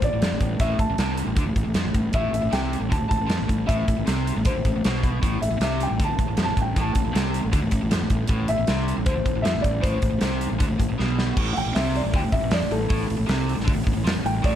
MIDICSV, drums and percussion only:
0, 0, Header, 1, 2, 480
1, 0, Start_track
1, 0, Key_signature, 0, "minor"
1, 0, Tempo, 384369
1, 756, Time_signature, 4, 2, 24, 8
1, 18174, End_track
2, 0, Start_track
2, 0, Title_t, "Drums"
2, 27, Note_on_c, 9, 42, 54
2, 28, Note_on_c, 9, 36, 76
2, 151, Note_off_c, 9, 42, 0
2, 153, Note_off_c, 9, 36, 0
2, 274, Note_on_c, 9, 42, 73
2, 281, Note_on_c, 9, 38, 102
2, 398, Note_off_c, 9, 42, 0
2, 406, Note_off_c, 9, 38, 0
2, 506, Note_on_c, 9, 42, 56
2, 508, Note_on_c, 9, 36, 64
2, 631, Note_off_c, 9, 42, 0
2, 633, Note_off_c, 9, 36, 0
2, 746, Note_on_c, 9, 42, 75
2, 748, Note_on_c, 9, 36, 92
2, 871, Note_off_c, 9, 42, 0
2, 873, Note_off_c, 9, 36, 0
2, 988, Note_on_c, 9, 36, 74
2, 991, Note_on_c, 9, 42, 62
2, 1113, Note_off_c, 9, 36, 0
2, 1116, Note_off_c, 9, 42, 0
2, 1228, Note_on_c, 9, 42, 77
2, 1235, Note_on_c, 9, 38, 93
2, 1353, Note_off_c, 9, 42, 0
2, 1360, Note_off_c, 9, 38, 0
2, 1467, Note_on_c, 9, 42, 56
2, 1592, Note_off_c, 9, 42, 0
2, 1705, Note_on_c, 9, 42, 77
2, 1706, Note_on_c, 9, 36, 99
2, 1830, Note_off_c, 9, 42, 0
2, 1831, Note_off_c, 9, 36, 0
2, 1948, Note_on_c, 9, 36, 79
2, 1953, Note_on_c, 9, 42, 54
2, 2073, Note_off_c, 9, 36, 0
2, 2078, Note_off_c, 9, 42, 0
2, 2178, Note_on_c, 9, 42, 76
2, 2185, Note_on_c, 9, 38, 93
2, 2303, Note_off_c, 9, 42, 0
2, 2310, Note_off_c, 9, 38, 0
2, 2428, Note_on_c, 9, 42, 57
2, 2429, Note_on_c, 9, 36, 70
2, 2553, Note_off_c, 9, 42, 0
2, 2554, Note_off_c, 9, 36, 0
2, 2658, Note_on_c, 9, 42, 72
2, 2670, Note_on_c, 9, 36, 97
2, 2783, Note_off_c, 9, 42, 0
2, 2795, Note_off_c, 9, 36, 0
2, 2922, Note_on_c, 9, 42, 57
2, 3047, Note_off_c, 9, 42, 0
2, 3155, Note_on_c, 9, 42, 69
2, 3162, Note_on_c, 9, 38, 91
2, 3279, Note_off_c, 9, 42, 0
2, 3287, Note_off_c, 9, 38, 0
2, 3411, Note_on_c, 9, 42, 52
2, 3536, Note_off_c, 9, 42, 0
2, 3645, Note_on_c, 9, 36, 105
2, 3654, Note_on_c, 9, 42, 75
2, 3770, Note_off_c, 9, 36, 0
2, 3779, Note_off_c, 9, 42, 0
2, 3884, Note_on_c, 9, 36, 81
2, 3894, Note_on_c, 9, 42, 56
2, 4009, Note_off_c, 9, 36, 0
2, 4019, Note_off_c, 9, 42, 0
2, 4116, Note_on_c, 9, 42, 74
2, 4123, Note_on_c, 9, 38, 100
2, 4240, Note_off_c, 9, 42, 0
2, 4248, Note_off_c, 9, 38, 0
2, 4362, Note_on_c, 9, 36, 70
2, 4366, Note_on_c, 9, 42, 56
2, 4487, Note_off_c, 9, 36, 0
2, 4491, Note_off_c, 9, 42, 0
2, 4606, Note_on_c, 9, 36, 100
2, 4615, Note_on_c, 9, 42, 77
2, 4731, Note_off_c, 9, 36, 0
2, 4740, Note_off_c, 9, 42, 0
2, 4846, Note_on_c, 9, 42, 63
2, 4847, Note_on_c, 9, 36, 79
2, 4971, Note_off_c, 9, 42, 0
2, 4972, Note_off_c, 9, 36, 0
2, 5083, Note_on_c, 9, 42, 78
2, 5091, Note_on_c, 9, 38, 90
2, 5208, Note_off_c, 9, 42, 0
2, 5215, Note_off_c, 9, 38, 0
2, 5337, Note_on_c, 9, 42, 56
2, 5462, Note_off_c, 9, 42, 0
2, 5556, Note_on_c, 9, 42, 77
2, 5563, Note_on_c, 9, 36, 96
2, 5681, Note_off_c, 9, 42, 0
2, 5688, Note_off_c, 9, 36, 0
2, 5806, Note_on_c, 9, 36, 76
2, 5806, Note_on_c, 9, 42, 56
2, 5931, Note_off_c, 9, 36, 0
2, 5931, Note_off_c, 9, 42, 0
2, 6050, Note_on_c, 9, 42, 75
2, 6058, Note_on_c, 9, 38, 97
2, 6175, Note_off_c, 9, 42, 0
2, 6183, Note_off_c, 9, 38, 0
2, 6287, Note_on_c, 9, 36, 70
2, 6292, Note_on_c, 9, 42, 54
2, 6412, Note_off_c, 9, 36, 0
2, 6417, Note_off_c, 9, 42, 0
2, 6529, Note_on_c, 9, 36, 88
2, 6532, Note_on_c, 9, 42, 70
2, 6654, Note_off_c, 9, 36, 0
2, 6657, Note_off_c, 9, 42, 0
2, 6775, Note_on_c, 9, 42, 61
2, 6900, Note_off_c, 9, 42, 0
2, 7006, Note_on_c, 9, 42, 69
2, 7014, Note_on_c, 9, 38, 98
2, 7131, Note_off_c, 9, 42, 0
2, 7139, Note_off_c, 9, 38, 0
2, 7249, Note_on_c, 9, 42, 51
2, 7374, Note_off_c, 9, 42, 0
2, 7489, Note_on_c, 9, 36, 106
2, 7491, Note_on_c, 9, 42, 70
2, 7613, Note_off_c, 9, 36, 0
2, 7616, Note_off_c, 9, 42, 0
2, 7728, Note_on_c, 9, 36, 79
2, 7733, Note_on_c, 9, 42, 51
2, 7852, Note_off_c, 9, 36, 0
2, 7858, Note_off_c, 9, 42, 0
2, 7955, Note_on_c, 9, 42, 73
2, 7963, Note_on_c, 9, 38, 93
2, 8080, Note_off_c, 9, 42, 0
2, 8088, Note_off_c, 9, 38, 0
2, 8205, Note_on_c, 9, 36, 69
2, 8208, Note_on_c, 9, 42, 53
2, 8330, Note_off_c, 9, 36, 0
2, 8333, Note_off_c, 9, 42, 0
2, 8446, Note_on_c, 9, 42, 70
2, 8448, Note_on_c, 9, 36, 98
2, 8571, Note_off_c, 9, 42, 0
2, 8573, Note_off_c, 9, 36, 0
2, 8678, Note_on_c, 9, 42, 63
2, 8687, Note_on_c, 9, 36, 73
2, 8803, Note_off_c, 9, 42, 0
2, 8811, Note_off_c, 9, 36, 0
2, 8935, Note_on_c, 9, 42, 68
2, 8943, Note_on_c, 9, 38, 101
2, 9060, Note_off_c, 9, 42, 0
2, 9067, Note_off_c, 9, 38, 0
2, 9169, Note_on_c, 9, 42, 54
2, 9294, Note_off_c, 9, 42, 0
2, 9402, Note_on_c, 9, 42, 75
2, 9404, Note_on_c, 9, 36, 96
2, 9527, Note_off_c, 9, 42, 0
2, 9529, Note_off_c, 9, 36, 0
2, 9631, Note_on_c, 9, 42, 64
2, 9641, Note_on_c, 9, 36, 72
2, 9756, Note_off_c, 9, 42, 0
2, 9766, Note_off_c, 9, 36, 0
2, 9879, Note_on_c, 9, 42, 85
2, 9887, Note_on_c, 9, 38, 102
2, 10004, Note_off_c, 9, 42, 0
2, 10012, Note_off_c, 9, 38, 0
2, 10114, Note_on_c, 9, 42, 62
2, 10119, Note_on_c, 9, 36, 72
2, 10239, Note_off_c, 9, 42, 0
2, 10244, Note_off_c, 9, 36, 0
2, 10334, Note_on_c, 9, 42, 78
2, 10355, Note_on_c, 9, 36, 98
2, 10458, Note_off_c, 9, 42, 0
2, 10480, Note_off_c, 9, 36, 0
2, 10590, Note_on_c, 9, 42, 62
2, 10715, Note_off_c, 9, 42, 0
2, 10832, Note_on_c, 9, 42, 72
2, 10839, Note_on_c, 9, 38, 97
2, 10956, Note_off_c, 9, 42, 0
2, 10964, Note_off_c, 9, 38, 0
2, 11091, Note_on_c, 9, 42, 57
2, 11216, Note_off_c, 9, 42, 0
2, 11314, Note_on_c, 9, 42, 76
2, 11319, Note_on_c, 9, 36, 107
2, 11439, Note_off_c, 9, 42, 0
2, 11444, Note_off_c, 9, 36, 0
2, 11561, Note_on_c, 9, 36, 78
2, 11565, Note_on_c, 9, 42, 50
2, 11686, Note_off_c, 9, 36, 0
2, 11690, Note_off_c, 9, 42, 0
2, 11802, Note_on_c, 9, 42, 74
2, 11809, Note_on_c, 9, 38, 98
2, 11927, Note_off_c, 9, 42, 0
2, 11934, Note_off_c, 9, 38, 0
2, 12043, Note_on_c, 9, 36, 70
2, 12044, Note_on_c, 9, 42, 55
2, 12168, Note_off_c, 9, 36, 0
2, 12169, Note_off_c, 9, 42, 0
2, 12282, Note_on_c, 9, 36, 101
2, 12291, Note_on_c, 9, 42, 76
2, 12407, Note_off_c, 9, 36, 0
2, 12416, Note_off_c, 9, 42, 0
2, 12513, Note_on_c, 9, 42, 58
2, 12521, Note_on_c, 9, 36, 75
2, 12638, Note_off_c, 9, 42, 0
2, 12646, Note_off_c, 9, 36, 0
2, 12748, Note_on_c, 9, 42, 71
2, 12756, Note_on_c, 9, 38, 93
2, 12873, Note_off_c, 9, 42, 0
2, 12881, Note_off_c, 9, 38, 0
2, 13002, Note_on_c, 9, 42, 55
2, 13127, Note_off_c, 9, 42, 0
2, 13240, Note_on_c, 9, 42, 75
2, 13243, Note_on_c, 9, 36, 103
2, 13365, Note_off_c, 9, 42, 0
2, 13368, Note_off_c, 9, 36, 0
2, 13482, Note_on_c, 9, 36, 73
2, 13490, Note_on_c, 9, 42, 58
2, 13607, Note_off_c, 9, 36, 0
2, 13615, Note_off_c, 9, 42, 0
2, 13730, Note_on_c, 9, 38, 53
2, 13855, Note_off_c, 9, 38, 0
2, 13969, Note_on_c, 9, 38, 70
2, 14094, Note_off_c, 9, 38, 0
2, 14197, Note_on_c, 9, 36, 101
2, 14199, Note_on_c, 9, 49, 95
2, 14322, Note_off_c, 9, 36, 0
2, 14323, Note_off_c, 9, 49, 0
2, 14444, Note_on_c, 9, 46, 52
2, 14569, Note_off_c, 9, 46, 0
2, 14681, Note_on_c, 9, 46, 62
2, 14689, Note_on_c, 9, 38, 102
2, 14806, Note_off_c, 9, 46, 0
2, 14814, Note_off_c, 9, 38, 0
2, 14931, Note_on_c, 9, 46, 48
2, 15056, Note_off_c, 9, 46, 0
2, 15156, Note_on_c, 9, 36, 100
2, 15161, Note_on_c, 9, 46, 65
2, 15281, Note_off_c, 9, 36, 0
2, 15286, Note_off_c, 9, 46, 0
2, 15388, Note_on_c, 9, 46, 51
2, 15391, Note_on_c, 9, 36, 72
2, 15513, Note_off_c, 9, 46, 0
2, 15516, Note_off_c, 9, 36, 0
2, 15622, Note_on_c, 9, 46, 70
2, 15630, Note_on_c, 9, 38, 109
2, 15747, Note_off_c, 9, 46, 0
2, 15755, Note_off_c, 9, 38, 0
2, 15875, Note_on_c, 9, 46, 50
2, 16000, Note_off_c, 9, 46, 0
2, 16109, Note_on_c, 9, 46, 67
2, 16113, Note_on_c, 9, 36, 95
2, 16234, Note_off_c, 9, 46, 0
2, 16237, Note_off_c, 9, 36, 0
2, 16361, Note_on_c, 9, 46, 59
2, 16486, Note_off_c, 9, 46, 0
2, 16595, Note_on_c, 9, 46, 64
2, 16602, Note_on_c, 9, 38, 95
2, 16720, Note_off_c, 9, 46, 0
2, 16727, Note_off_c, 9, 38, 0
2, 16850, Note_on_c, 9, 46, 55
2, 16975, Note_off_c, 9, 46, 0
2, 16987, Note_on_c, 9, 38, 32
2, 17080, Note_on_c, 9, 36, 106
2, 17100, Note_on_c, 9, 46, 77
2, 17112, Note_off_c, 9, 38, 0
2, 17205, Note_off_c, 9, 36, 0
2, 17225, Note_off_c, 9, 46, 0
2, 17318, Note_on_c, 9, 36, 75
2, 17330, Note_on_c, 9, 46, 57
2, 17443, Note_off_c, 9, 36, 0
2, 17455, Note_off_c, 9, 46, 0
2, 17568, Note_on_c, 9, 46, 79
2, 17576, Note_on_c, 9, 38, 106
2, 17693, Note_off_c, 9, 46, 0
2, 17701, Note_off_c, 9, 38, 0
2, 17807, Note_on_c, 9, 46, 56
2, 17932, Note_off_c, 9, 46, 0
2, 18035, Note_on_c, 9, 36, 105
2, 18044, Note_on_c, 9, 46, 77
2, 18160, Note_off_c, 9, 36, 0
2, 18169, Note_off_c, 9, 46, 0
2, 18174, End_track
0, 0, End_of_file